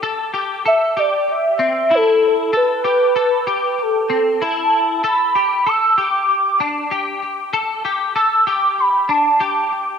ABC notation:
X:1
M:4/4
L:1/8
Q:1/4=96
K:G
V:1 name="Soft synth lead"
z2 e d e2 A2 | B4 A2 a2 | b2 e' d'4 z | z2 e' d' b a2 z |]
V:2 name="Clean electric guitar"
A G A G2 C E2 | A G A G2 C E2 | A G A G2 D G2 | A G A G2 D G2 |]